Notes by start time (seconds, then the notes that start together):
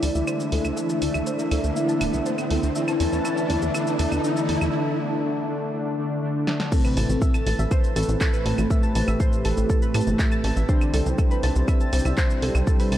Already playing: D3 E3 A3 D4 E4 D5 E5, riser
0.03 D2 A5, open hi-hat, shaker
0.15 D2 E5, shaker
0.27 C5, claves, shaker
0.40 shaker
0.52 D2 A4, open hi-hat
0.65 D2, claves, shaker
0.77 D3 E3 A3 D4 E4 E5, shaker
0.89 A5, shaker
1.02 D2 A5, open hi-hat, shaker
1.14 D2 E5, claves, shaker
1.27 C5, shaker
1.39 shaker
1.51 D2 A4, open hi-hat, claves, shaker
1.64 D2, shaker
1.76 D3 E3 A3 D4 E4 E5, shaker
1.89 A5, shaker
2.01 D1 A5, open hi-hat, claves, shaker
2.13 C2 E5, shaker
2.26 C5, shaker
2.38 claves, shaker
2.50 D2 A4, open hi-hat
2.63 D2, shaker
2.75 D3 E3 A3 B3 D4 E4 B4 E5 A5, shaker
2.88 A5, claves, shaker
3.00 E2 A5, open hi-hat, shaker
3.13 E2 E5, shaker
3.25 D3 E3 A3 D4 E4 E5, claves, shaker
3.37 A5, shaker
3.50 E2 A5, open hi-hat, shaker
3.62 E2 E5, shaker
3.75 D3 E3 A3 D4 E4 E5, claves, shaker
3.87 A5, shaker
3.99 E2 A5, open hi-hat, shaker
4.12 E2 E5, claves, shaker
4.24 D3 E3 A3 D4 E4 E5, shaker
4.37 A5, shaker
4.49 E2 A5, open hi-hat
4.61 E2 E5, claves, shaker
4.74 D3 A3 D4
4.99 D3 A3 D4
5.23 D3 A3 D4
5.48 D3 A3 D4
5.73 D3 A3 D4
5.98 D3 A3 D4
6.22 D3 A3 D4
6.47 D3 A3 D4, snare
6.60 snare
6.72 A2 C3 E3 A3 C4 A4 B4 A5, kick, crash, shaker
6.85 B4 B5, claves, shaker
6.97 A1 A5 A6, open hi-hat, shaker
7.09 A1, shaker
7.22 E5 E6, kick, shaker
7.34 A5 A6, claves, shaker
7.46 A1 A5 A6, open hi-hat, shaker
7.59 A1 E5 E6, shaker
7.71 C5 C6, kick, claves, shaker
7.84 shaker
7.96 A1 A2 E3 A3 A4 A5, open hi-hat, shaker
8.02 shaker
8.09 A1, shaker
8.21 A4 A5, kick, clap, claves, shaker
8.33 B4 B5, shaker
8.46 A1 A2 A3 A5 A6, open hi-hat
8.58 A1, claves, shaker
8.70 A2 E3 A3 G4 E5 E6, kick, shaker
8.83 A5 A6, shaker
8.95 A1 A5 A6, open hi-hat, shaker
9.08 A1 E5 E6, claves, shaker
9.20 C5 C6, kick, shaker
9.33 shaker
9.45 A1 A4 A5, open hi-hat, claves, shaker
9.57 A1, shaker
9.70 A4 A5, kick, shaker
9.82 B4 B5, shaker
9.94 A2 A5 A6, open hi-hat, claves, shaker
10.01 shaker
10.07 G1 A2 E3 A3, shaker
10.19 E5 E6, kick, clap, shaker
10.32 A5 A6, claves, shaker
10.44 A1 A5 A6, open hi-hat
10.56 A1 E5 E6, shaker
10.69 C3 D3 G3 C4 D4 E4 C5 C6, kick, shaker
10.81 claves, shaker
10.94 C2 A4 A5, open hi-hat, shaker
11.06 C2, shaker
11.18 A4 A5, kick, claves, shaker
11.31 B4 B5, shaker
11.43 C2 A5 A6, open hi-hat, shaker
11.56 C2, shaker
11.68 E5 E6, kick, claves, shaker
11.80 A5 A6, shaker
11.93 C2 C3 G3 C4 A5 A6, open hi-hat, shaker
11.99 shaker
12.05 C2 E5 E6, claves, shaker
12.17 C5 C6, kick, clap, shaker
12.30 shaker
12.42 C2 G3 G4 A4 A5, open hi-hat
12.55 C2, claves, shaker
12.67 C3 G3 C4 A4 A5, kick, shaker
12.80 B4 B5, open hi-hat, shaker
12.92 C2 A5 A6, open hi-hat, claves, shaker